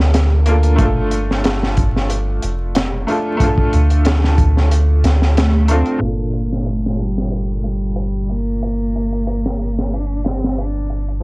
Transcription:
0.00 0.77 D2 loud
0.00 0.42 A#3 medium
0.00 0.43 D4 medium
0.00 0.45 F4 medium
0.00 0.46 A4 medium
0.00 snare soft
0.14 snare loud
0.14 closed hi-hat medium
0.46 0.75 A#3 medium
0.46 0.76 D4 medium
0.46 0.77 F4 medium
0.46 closed hi-hat medium
0.50 0.78 A4 medium
0.63 closed hi-hat soft
0.76 2.39 G1 medium
0.76 3.02 A3 medium
0.76 3.04 D4 medium
0.76 kick loud
0.76 closed hi-hat medium
0.82 3.05 F4 medium
0.82 3.07 A4 medium
1.11 closed hi-hat medium
1.31 snare soft
1.44 snare loud
1.44 closed hi-hat medium
1.63 snare soft
1.77 kick medium
1.77 closed hi-hat medium
1.96 snare soft
2.10 closed hi-hat medium
2.42 3.05 F1 loud
2.42 closed hi-hat medium
2.75 snare loud
2.75 closed hi-hat medium
3.07 3.35 A3 medium
3.07 3.37 D4 medium
3.07 3.38 F4 medium
3.07 closed hi-hat medium
3.11 3.39 A4 medium
3.37 5.63 A3 medium
3.37 5.65 D4 medium
3.37 kick loud
3.37 closed hi-hat medium
3.43 5.66 F4 medium
3.43 5.68 A4 medium
3.57 kick medium
3.73 5.03 D2 loud
3.73 closed hi-hat medium
3.90 closed hi-hat soft
4.05 snare loud
4.05 closed hi-hat medium
4.24 snare soft
4.38 kick medium
4.38 closed hi-hat medium
4.57 snare soft
4.71 closed hi-hat medium
5.04 5.83 D2 medium
5.04 snare medium
5.04 closed hi-hat medium
5.22 snare soft
5.37 5.72 A3 medium
5.37 snare loud
5.37 closed hi-hat medium
5.68 5.97 A3 medium
5.68 6.04 C4 medium
5.68 5.98 D4 medium
5.68 5.99 F4 medium
5.68 closed hi-hat medium
5.73 6.00 A4 medium
5.86 closed hi-hat soft
5.98 11.20 G1 medium
5.98 11.18 A#2 medium
5.98 closed hi-hat medium
6.03 6.69 A#3 medium
6.03 11.21 F4 medium
6.08 11.23 A4 medium
6.33 closed hi-hat medium
6.53 snare soft
6.66 7.00 A3 medium
6.66 closed hi-hat medium
6.86 snare soft
6.99 7.54 G3 medium
6.99 closed hi-hat medium
7.18 snare soft
7.31 closed hi-hat medium
7.60 7.67 A3 medium
7.60 closed hi-hat medium
7.65 8.33 G3 medium
7.96 closed hi-hat medium
8.29 9.95 A#3 loud
8.29 closed hi-hat soft
8.62 closed hi-hat medium
8.95 closed hi-hat medium
9.12 closed hi-hat soft
9.27 closed hi-hat medium
9.46 snare soft
9.59 closed hi-hat medium
9.79 snare soft
9.93 10.28 D4 medium
9.93 closed hi-hat medium
10.24 10.58 C4 medium
10.24 snare medium
10.24 closed hi-hat medium
10.44 snare soft
10.58 11.05 D4 medium
10.58 closed hi-hat medium
10.90 closed hi-hat medium
11.08 closed hi-hat soft
11.20 11.23 F3 medium

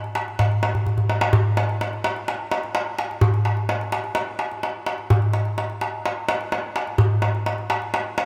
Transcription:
0.04 darbuka tek soft
0.15 darbuka tek medium
0.28 darbuka tek soft
0.39 darbuka tek medium
0.39 darbuka dum medium
0.51 darbuka tek soft
0.63 darbuka tek medium
0.75 darbuka dum soft
0.86 darbuka dum soft
0.98 darbuka dum soft
1.10 darbuka tek medium
1.21 darbuka tek medium
1.33 darbuka dum medium
1.57 darbuka tek medium
1.69 darbuka tek soft
1.81 darbuka tek medium
1.93 darbuka tek soft
2.04 darbuka tek medium
2.16 darbuka tek soft
2.28 darbuka tek medium
2.51 darbuka tek medium
2.63 darbuka tek soft
2.75 darbuka tek medium
2.99 darbuka tek medium
3.11 darbuka tek soft
3.21 darbuka dum medium
3.34 darbuka tek soft
3.45 darbuka tek medium
3.57 darbuka tek soft
3.69 darbuka tek medium
3.81 darbuka tek soft
3.92 darbuka tek medium
4.04 darbuka tek soft
4.15 darbuka tek medium
4.39 darbuka tek medium
4.51 darbuka tek soft
4.63 darbuka tek medium
4.86 darbuka tek medium
4.98 darbuka tek soft
5.10 darbuka dum medium
5.22 darbuka tek soft
5.33 darbuka tek soft
5.45 darbuka tek soft
5.58 darbuka tek medium
5.70 darbuka tek soft
5.81 darbuka tek medium
6.06 darbuka tek medium
6.29 darbuka tek medium
6.41 darbuka tek soft
6.52 darbuka tek medium
6.76 darbuka tek medium
6.87 darbuka tek soft
6.98 darbuka dum medium
7.22 darbuka tek medium
7.35 darbuka tek soft
7.46 darbuka tek medium
7.58 darbuka tek soft
7.70 darbuka tek medium
7.82 darbuka tek soft
7.94 darbuka tek medium
8.18 darbuka tek medium

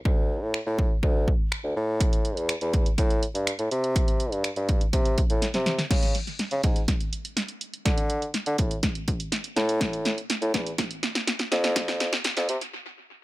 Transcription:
0.05 0.43 D2 loud
0.05 kick loud
0.42 0.59 A2 medium
0.54 finger snap loud
0.66 0.92 A2 medium
0.79 kick medium
1.03 1.29 D2 medium
1.03 kick medium
1.28 kick medium
1.52 finger snap loud
1.64 1.72 D2 medium
1.76 2.38 A2 medium
2.00 kick loud
2.00 closed hi-hat loud
2.13 closed hi-hat medium
2.25 closed hi-hat medium
2.37 2.54 E2 medium
2.37 closed hi-hat soft
2.49 finger snap loud
2.49 closed hi-hat medium
2.61 2.87 E2 medium
2.61 closed hi-hat medium
2.73 kick loud
2.73 closed hi-hat medium
2.86 closed hi-hat medium
2.98 3.24 A2 medium
2.98 kick medium
2.98 closed hi-hat medium
3.10 closed hi-hat soft
3.23 closed hi-hat medium
3.35 3.52 G2 medium
3.35 closed hi-hat medium
3.47 finger snap loud
3.47 closed hi-hat loud
3.59 3.67 A2 medium
3.59 closed hi-hat medium
3.71 4.34 C3 loud
3.71 closed hi-hat medium
3.84 closed hi-hat medium
3.96 kick loud
3.96 closed hi-hat medium
4.08 closed hi-hat soft
4.20 closed hi-hat medium
4.32 4.49 G2 medium
4.32 closed hi-hat soft
4.44 finger snap loud
4.44 closed hi-hat medium
4.56 4.82 G2 medium
4.56 closed hi-hat medium
4.69 kick medium
4.69 closed hi-hat medium
4.81 closed hi-hat soft
4.93 5.19 C3 medium
4.93 kick medium
4.93 closed hi-hat medium
5.05 closed hi-hat soft
5.18 kick medium
5.18 closed hi-hat medium
5.30 5.47 A2 medium
5.30 closed hi-hat medium
5.42 snare medium
5.42 closed hi-hat loud
5.54 5.80 C3 medium
5.54 snare medium
5.54 closed hi-hat medium
5.66 snare medium
5.66 closed hi-hat medium
5.78 snare medium
5.78 closed hi-hat medium
5.90 6.14 C#3 loud
5.90 kick loud
5.90 snare medium
5.90 closed hi-hat medium
5.90 crash medium
6.03 closed hi-hat soft
6.15 closed hi-hat medium
6.27 closed hi-hat soft
6.39 snare medium
6.39 closed hi-hat loud
6.51 6.60 C#3 medium
6.51 closed hi-hat medium
6.63 6.81 G#2 medium
6.63 kick loud
6.63 closed hi-hat medium
6.76 closed hi-hat medium
6.88 kick medium
6.88 snare medium
6.88 closed hi-hat medium
7.01 closed hi-hat soft
7.13 closed hi-hat medium
7.25 closed hi-hat medium
7.37 snare medium
7.37 closed hi-hat loud
7.48 closed hi-hat medium
7.61 closed hi-hat medium
7.74 closed hi-hat medium
7.86 8.28 D3 loud
7.86 kick loud
7.86 snare medium
7.86 closed hi-hat loud
7.98 closed hi-hat soft
8.10 closed hi-hat medium
8.22 closed hi-hat soft
8.34 snare medium
8.34 closed hi-hat medium
8.46 8.55 D3 medium
8.46 closed hi-hat medium
8.58 8.76 A2 medium
8.58 kick medium
8.58 closed hi-hat medium
8.71 closed hi-hat medium
8.83 kick medium
8.83 snare medium
8.83 closed hi-hat medium
8.95 closed hi-hat soft
9.08 kick medium
9.08 closed hi-hat medium
9.20 closed hi-hat medium
9.32 snare medium
9.32 closed hi-hat loud
9.44 closed hi-hat medium
9.56 10.16 A2 loud
9.56 snare medium
9.56 closed hi-hat medium
9.69 closed hi-hat medium
9.81 kick loud
9.81 snare medium
9.81 closed hi-hat medium
9.93 closed hi-hat soft
10.05 snare medium
10.05 closed hi-hat medium
10.18 closed hi-hat soft
10.30 snare medium
10.30 closed hi-hat loud
10.42 10.50 A2 loud
10.42 closed hi-hat medium
10.54 10.71 E2 medium
10.54 kick medium
10.54 snare medium
10.54 closed hi-hat medium
10.66 closed hi-hat medium
10.78 kick medium
10.78 snare loud
10.78 closed hi-hat medium
10.91 closed hi-hat medium
11.03 snare loud
11.03 closed hi-hat medium
11.15 snare loud
11.15 closed hi-hat medium
11.27 snare loud
11.27 closed hi-hat loud
11.39 snare loud
11.39 closed hi-hat medium
11.52 12.12 F2 loud
11.52 snare loud
11.52 closed hi-hat medium
11.64 snare loud
11.64 closed hi-hat medium
11.76 kick loud
11.76 snare loud
11.76 closed hi-hat loud
11.88 snare loud
11.88 closed hi-hat medium
12.00 snare loud
12.00 closed hi-hat medium
12.13 snare loud
12.13 closed hi-hat medium
12.24 snare loud
12.24 closed hi-hat loud
12.37 12.46 F2 loud
12.37 snare loud
12.37 closed hi-hat medium
12.49 12.58 C3 medium
12.49 closed hi-hat medium
12.61 closed hi-hat medium

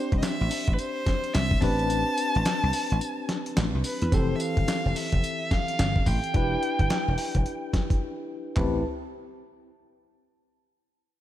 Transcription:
0.00 1.58 C4 medium
0.00 1.58 D4 medium
0.00 1.59 G4 medium
0.00 0.17 C5 medium
0.00 1.59 C5 medium
0.12 0.20 C2 medium
0.12 kick loud
0.12 closed hi-hat soft
0.18 0.24 D#5 medium
0.22 0.75 E5 loud
0.22 snare loud
0.22 clap medium
0.22 closed hi-hat medium
0.22 tambourine loud
0.41 0.49 A1 loud
0.51 open hi-hat medium
0.51 tambourine medium
0.67 0.76 A1 medium
0.67 kick medium
0.67 closed hi-hat medium
0.73 0.80 B4 medium
0.79 1.35 C5 loud
0.79 closed hi-hat medium
0.79 tambourine medium
1.06 kick loud
1.06 snare medium
1.06 closed hi-hat medium
1.24 closed hi-hat medium
1.34 1.55 C2 medium
1.34 1.63 E5 loud
1.34 snare loud
1.34 clap medium
1.34 closed hi-hat medium
1.34 tambourine medium
1.51 kick loud
1.61 2.03 A1 loud
1.61 3.80 C4 medium
1.61 3.80 D4 medium
1.61 3.81 G4 medium
1.61 3.81 B4 medium
1.61 3.56 A5 loud
1.61 kick loud
1.61 open hi-hat medium
1.61 tambourine medium
1.79 closed hi-hat medium
1.90 closed hi-hat medium
1.90 tambourine medium
2.17 closed hi-hat medium
2.17 tambourine medium
2.35 2.43 A1 medium
2.35 closed hi-hat soft
2.45 snare loud
2.45 clap loud
2.45 closed hi-hat medium
2.45 tambourine loud
2.63 2.71 C2 medium
2.73 open hi-hat medium
2.73 tambourine medium
2.90 2.99 A1 medium
2.90 closed hi-hat medium
3.01 closed hi-hat medium
3.01 tambourine medium
3.29 snare medium
3.29 closed hi-hat medium
3.46 closed hi-hat medium
3.57 3.70 A1 loud
3.57 snare loud
3.57 clap medium
3.57 closed hi-hat medium
3.57 tambourine medium
3.75 3.82 C2 medium
3.84 4.15 B4 medium
3.84 open hi-hat medium
3.84 tambourine medium
4.02 4.10 E2 medium
4.02 closed hi-hat medium
4.12 4.33 F1 loud
4.12 6.30 E3 medium
4.12 6.30 C4 medium
4.12 6.31 G4 medium
4.12 6.31 A4 medium
4.12 4.37 C5 medium
4.12 kick loud
4.12 closed hi-hat medium
4.12 tambourine medium
4.36 4.42 E5 medium
4.40 4.97 F5 medium
4.40 closed hi-hat medium
4.40 tambourine medium
4.57 4.65 G1 medium
4.57 kick loud
4.57 closed hi-hat soft
4.68 snare loud
4.68 clap medium
4.68 closed hi-hat medium
4.68 tambourine loud
4.86 4.93 F1 medium
4.96 5.52 E5 loud
4.96 open hi-hat medium
4.96 tambourine medium
5.12 5.21 F1 medium
5.12 kick medium
5.12 closed hi-hat medium
5.24 closed hi-hat medium
5.24 tambourine medium
5.51 6.08 F5 loud
5.51 kick loud
5.51 snare medium
5.51 closed hi-hat medium
5.68 closed hi-hat medium
5.79 6.00 G1 medium
5.79 snare loud
5.79 clap medium
5.79 closed hi-hat medium
5.79 tambourine medium
5.96 kick loud
6.06 6.19 A1 medium
6.06 8.01 G5 loud
6.06 kick medium
6.06 open hi-hat medium
6.06 tambourine medium
6.24 closed hi-hat medium
6.34 6.55 E1 loud
6.34 8.52 D4 medium
6.34 8.53 E4 medium
6.34 6.43 F#4 soft
6.34 8.53 B4 medium
6.34 kick loud
6.34 closed hi-hat medium
6.42 8.56 G4 medium
6.63 closed hi-hat medium
6.79 6.87 G1 medium
6.79 kick medium
6.79 closed hi-hat soft
6.90 snare loud
6.90 clap loud
6.90 closed hi-hat medium
7.08 7.15 E1 medium
7.18 open hi-hat medium
7.35 7.43 E1 medium
7.35 kick medium
7.35 closed hi-hat medium
7.46 closed hi-hat medium
7.74 kick medium
7.74 snare medium
7.74 closed hi-hat medium
7.90 kick loud
7.90 closed hi-hat medium
8.57 8.83 A1 loud
8.57 8.83 C4 medium
8.57 8.83 E4 medium
8.57 8.83 G4 medium
8.57 8.83 B4 medium
8.57 8.83 A5 medium
8.57 kick loud
8.57 clap medium
8.57 floor tom loud

